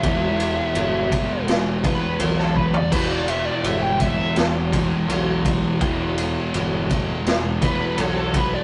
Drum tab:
CC |----------------|x---------------|----------------|
RD |x-x-x-x-x-x-x---|x-x-x-x-x-x-x-x-|x-x-x-x-x-x-x-x-|
SD |--------o----o--|--------o-------|--------o-------|
FT |---------------o|----------------|----------------|
BD |o-----o---o---o-|o-----o---o---o-|o-----o---o---o-|